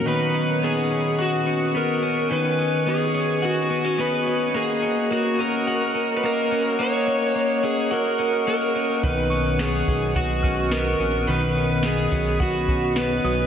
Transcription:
Already playing: A#3 C#4 F#4
0.06 D#3 B3 B4 D#5 F#5 C#6
0.34 C#4
0.62 B3 G#4
0.91 C#4
1.19 F#4
1.46 C#4
1.75 B3 A#4
2.02 C#4
2.29 D#3 B4 G#5
2.59 C#4
2.86 B3 G#4
3.14 C#4
3.42 F#4
3.70 B3
3.85 C#4
3.98 B3 B4
4.26 C#4
4.54 A#3 G#4 A#4 F#5
4.82 C#4
5.10 A#3 F#4
5.39 C#4 A#4
5.67 F#4
5.95 C#4
6.17 B4
6.23 A#3 A#4
6.51 C#4
6.79 A#3 C#5
7.07 C#4
7.35 A#3
7.63 C#4 G#4
7.91 F#4 A#4
8.19 C#4
8.47 A#3 A#4
8.75 C#4
9.03 B1 D#3 B3 B4, kick, closed hi-hat
9.30 C#4 C#6
9.59 B3 G#4, snare, closed hi-hat
9.87 B1 C#4, kick
10.15 B1 F#4, kick, closed hi-hat
10.43 C#4 F6, kick
10.72 B3 A#4, snare, closed hi-hat
11.00 A#1 C#4
11.27 B1 D#3 B4 B5, closed hi-hat
11.56 C#4
11.83 B3 G#4, snare, closed hi-hat
12.12 B1 C#4, kick
12.39 B1 F#4, kick, closed hi-hat
12.68 C#4, kick
12.96 B3 B4, snare, closed hi-hat
13.24 B1 C#4 D#6

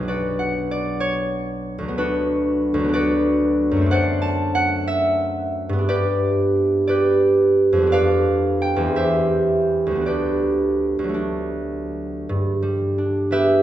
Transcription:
Already playing: B1 F#3 B3 A4 C#5 F#5
0.03 D4
0.08 F#4 B4 D5
0.39 F#5
0.71 D5
1.00 C#5
1.78 D2
1.83 F#3
1.88 B3
1.98 D4 F#4 B4
2.74 D2
2.80 F#3
2.84 B3
2.89 D4
2.93 F#4 B4 D5
3.71 F#2
3.77 A3
3.81 C4
3.86 D4
3.91 C5 D5 F#5
4.22 A5
4.55 F#5
4.88 E5
5.69 G2 B3
5.78 D4
5.89 G4 B4 D5
6.87 G4 B4 D5
7.73 F2
7.77 G3
7.82 B3
7.87 D4
7.92 B4 D5 F5
8.62 G5
8.76 E2
8.81 G3
8.86 C4
8.96 G4 C5 E5
9.86 D2
9.91 G3
9.96 B3
10.01 D4
10.06 G4 B4 D5
10.99 D2
11.04 F#3
11.09 A3
11.14 D4
12.29 G2
12.62 G3
12.98 D4
13.31 B3 G4 B4 E5

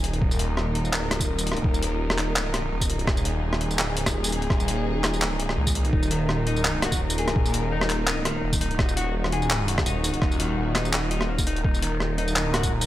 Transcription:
Already playing: D#1 A#2 D#3 D#4 G#4
0.04 closed hi-hat
0.13 closed hi-hat
0.22 D#1 A#4, kick
0.31 tambourine
0.39 closed hi-hat
0.57 cross-stick
0.75 closed hi-hat
0.85 tambourine
0.93 D1, clap
1.11 cross-stick, closed hi-hat
1.20 kick, tambourine
1.29 D#1
1.38 tambourine
1.47 closed hi-hat
1.52 cross-stick
1.57 closed hi-hat
1.64 D#1, kick
1.74 tambourine
1.83 closed hi-hat
2.10 cross-stick
2.18 clap, closed hi-hat
2.36 clap
2.54 cross-stick, closed hi-hat
2.72 D#1
2.81 kick, tambourine
2.90 closed hi-hat
2.99 closed hi-hat
3.07 D#1 G#4, kick, cross-stick
3.17 tambourine
3.25 closed hi-hat
3.53 cross-stick
3.61 closed hi-hat
3.71 tambourine
3.79 D1, clap
3.97 closed hi-hat
4.06 kick, cross-stick, tambourine
4.15 D#1
4.24 tambourine
4.32 closed hi-hat
4.42 closed hi-hat
4.50 D#1, kick, cross-stick
4.60 tambourine
4.68 closed hi-hat
5.04 cross-stick, clap, closed hi-hat
5.14 tambourine
5.22 clap
5.40 closed hi-hat
5.49 cross-stick
5.57 C#2
5.67 kick, tambourine
5.75 closed hi-hat
5.85 closed hi-hat
5.93 D#1 D#4 A#4, kick
6.03 tambourine
6.11 D#3, closed hi-hat
6.29 cross-stick
6.47 D#4, closed hi-hat
6.56 tambourine
6.65 D#4, clap
6.82 F#4, cross-stick, closed hi-hat
6.92 kick, tambourine
7.01 D#1
7.10 tambourine
7.18 G#4, closed hi-hat
7.28 cross-stick, closed hi-hat
7.36 D#1, kick
7.46 tambourine
7.54 closed hi-hat
7.72 D#4
7.81 cross-stick
7.90 clap, closed hi-hat
8.07 D#4, clap
8.25 D#3, cross-stick, closed hi-hat
8.43 D#1
8.53 kick, tambourine
8.61 D#4, closed hi-hat
8.71 closed hi-hat
8.79 D#1 D#4 F#4, kick, cross-stick
8.89 tambourine
8.97 F#4, closed hi-hat
9.24 cross-stick
9.32 G#4, closed hi-hat
9.42 tambourine
9.50 clap
9.68 closed hi-hat
9.78 kick, cross-stick
9.86 D#1 D#4, tambourine
10.04 closed hi-hat, tambourine
10.14 closed hi-hat
10.22 D#1 D#4, kick, cross-stick
10.32 tambourine
10.40 D#3, closed hi-hat
10.58 D#1
10.75 D#4, cross-stick, clap, closed hi-hat
10.85 tambourine
10.93 D#4, clap
11.11 D#4, closed hi-hat
11.21 cross-stick
11.29 A#3
11.38 kick, tambourine
11.47 D#4, closed hi-hat
11.56 closed hi-hat
11.64 D#1 D#4 A#4, kick
11.74 tambourine
11.82 D#3, closed hi-hat
12.00 cross-stick
12.18 D#4, closed hi-hat
12.28 tambourine
12.36 D1 D#4, clap
12.54 F#4, cross-stick, closed hi-hat
12.63 kick, tambourine
12.72 D#1
12.81 tambourine

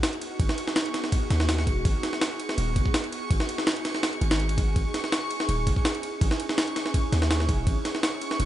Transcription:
Already playing: B3 D#4 F#4 G#4 C#6
0.03 snare, ride
0.13 ride
0.21 ride
0.40 G#1, kick, ride
0.49 snare
0.58 ride
0.68 snare
0.76 snare, ride
0.86 ride
0.94 snare, ride
1.04 snare
1.12 kick, ride
1.30 D#2, snare, ride
1.40 snare
1.49 snare, ride
1.58 snare
1.67 D#1, kick, ride
1.85 G#1, kick, ride
2.03 snare, ride
2.13 snare
2.21 snare, ride
2.40 ride
2.49 snare
2.58 D#1, ride
2.76 G#1, kick, ride
2.86 kick
2.94 snare, ride
3.04 ride
3.12 ride
3.31 G#1, kick, ride
3.40 snare
3.49 ride
3.58 snare
3.67 snare, ride
3.76 ride
3.85 snare, ride
3.95 snare
4.03 snare, ride
4.13 ride
4.21 G#1, ride
4.31 snare, ride
4.40 ride
4.49 ride
4.58 kick, ride
4.76 G#1 C#4 E4, kick, ride
4.94 snare, ride
5.04 snare
5.12 snare, ride
5.30 ride
5.40 snare
5.49 D#1, ride
5.67 G#1, kick, ride
5.76 kick
5.85 snare, ride
5.95 ride
6.03 ride
6.21 G#1, kick, ride
6.31 snare
6.40 ride
6.49 snare
6.58 snare, ride
6.68 ride
6.76 snare, ride
6.86 snare
6.94 kick, ride
7.12 D#2, snare, ride
7.22 snare
7.31 snare, ride
7.40 snare
7.49 D#1, kick, ride
7.67 G#1, kick, ride
7.85 snare, ride
7.95 snare
8.03 snare, ride
8.21 ride
8.31 snare
8.40 D#1, ride

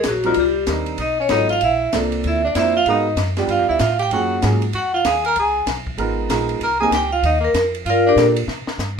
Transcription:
0.03 A#1 F#3, snare, hi-hat pedal, ride
0.08 F#4
0.23 F3 G3 C4 D4 D#4 F4 A#4, ride
0.34 C2 G3, ride
0.40 G4
0.67 D#2 G3 C4 D4 D#4 A#4, snare, hi-hat pedal, ride
0.86 ride
0.98 B1 D#4, ride
1.02 D#5
1.20 C#4 C#5
1.29 G#1 F#3 B3 D#4 F4 A4, snare, hi-hat pedal, ride
1.34 D#5
1.49 F4 F5, ride
1.61 A#1 E4 E5, ride
1.93 C2 A#3 C4 D4 F4 A4, snare, hi-hat pedal, ride
2.12 ride
2.24 D2 E4 E5, ride
2.44 D4 D5
2.55 F2 A#3 C4 D4 E4 F4 C5, snare, hi-hat pedal, ride
2.59 E5
2.77 F4 F5
2.86 G#2 G#3 B3 D#4 F#4 A#4, ride
2.90 D#5
3.16 F#2, snare, hi-hat pedal, ride
3.37 G3 B3 D4 F4 G4, snare, ride
3.48 G2 F4, ride
3.52 F5
3.59 F2
3.69 D2 E4 E5
3.79 A2 F4 F5, snare, hi-hat pedal, ride
3.99 G4 G5, ride
4.11 F#2 F#3 A#3 C#4 F4 F#4 G#4, ride
4.16 F#5
4.42 G#2 F#3 A#3 C#4 F4 G#4, snare, hi-hat pedal, ride
4.62 ride
4.73 F2 F#4, ride
4.78 F#5
4.94 F4 F5
5.05 D#2 G#4 G#5, snare, hi-hat pedal, ride
5.25 A#4 A#5, ride
5.36 C#2 G#4, ride
5.40 G#5
5.66 B1, snare, hi-hat pedal, ride
5.87 kick
5.97 G#1 G#3 B3 D#4 F4 A#4, ride
6.29 A#1 G#3 B3 D#4 F4 A#4, snare, hi-hat pedal, ride
6.49 ride
6.60 C2 A#4 A#5, ride
6.80 A#3 C4 D#4 G4 G#4 A#4 G#5
6.91 C#2 G4, snare, hi-hat pedal, ride
6.96 G5
7.13 F4 F5
7.23 D#2 D#4 D#5, ride
7.40 A#3 A#4
7.54 F2, snare, hi-hat pedal, ride
7.74 ride
7.85 G2 F4, ride
7.90 F4 A#4 D5 F5
8.07 D4 G4 A#4 D5
8.16 A#2 A#3 D4 F4 G4 A4, snare, hi-hat pedal, ride
8.36 ride
8.48 C3, snare
8.67 muted upright bass stroke, snare
8.78 G2, snare, hi-hat pedal

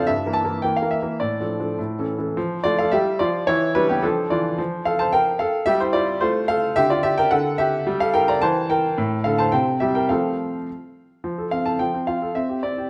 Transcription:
0.07 G2 E5
0.26 E3 A#3 A#4
0.33 A5
0.44 E3 A#3 A#4
0.62 E3 A#3 A#4 G5
0.77 F5
0.82 E3 A#3 A#4
0.91 E5
1.02 E3 A#3 A#4
1.20 A2 D5
1.40 F3 D4 A4
1.60 F3 D4 A4
1.78 A2
1.99 E3 C#4 A4
2.18 E3 C#4 A4
2.37 F3
2.64 A3 F4 D5
2.78 A4 F5
2.92 G3 G4 E5
3.19 F3 F4 D5
3.47 E3 E4 C#5
3.75 G3 D4 B4
3.89 B3 G4
4.03 F3 D4 A4
4.30 E3 F4 D5
4.58 F3
4.85 A4 F5
4.99 C5 A5
5.13 A#4 G5
5.39 A4 F5
5.66 G3 G4 E5
5.80 E4 C5
5.93 F4 D5
6.21 A3 F4 C5
6.48 A4 F5
6.76 D3 G4 E5
6.90 F4 D5
7.03 G4 E5
7.18 A#4 G5
7.31 D3 A4 F#5
7.58 G4 E5
7.87 G3
8.00 A4 F5
8.14 A#4 G5
8.28 D5 A#5
8.42 E3 C5 A5
8.70 A#4 G5
8.98 A2
9.24 D3 A4 F5
9.38 C5 A5
9.52 C3 C5 G5
9.80 G3 G4 E5
9.95 A#4 G5
10.09 F3 A3 C4 A4 F5
11.24 F3
11.38 A4
11.51 C4 F5
11.66 A4 A5
11.79 F3 G5
11.94 C4
12.07 F4 F5
12.22 A4
12.35 C4 E5
12.49 G4
12.63 C4 D5
12.78 G4

